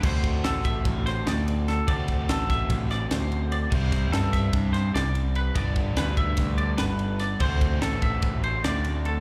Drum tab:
CC |x--------|---------|x--------|---------|
RD |-xxxxxxxx|xxxxxxxxx|-xxxxxxxx|xxxxxxxxx|
SD |--o--oo-o|--oo-oo--|-ooo-oo--|--o-o-o-o|
BD |oo-oo----|oo-oo----|oo-oo----|oo-oo----|

CC |x--------|
RD |-xxxxxxxx|
SD |--o---o--|
BD |oo-oo----|